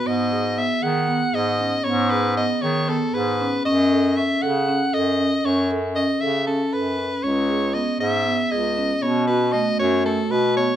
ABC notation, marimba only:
X:1
M:7/8
L:1/8
Q:1/4=117
K:G#phr
V:1 name="Marimba"
B, G B, G B, G C | B, G B, G B, G C | C A C A C A C | C A C A C A C |
C G B, G B, G C | B, F A, F A, F B, |]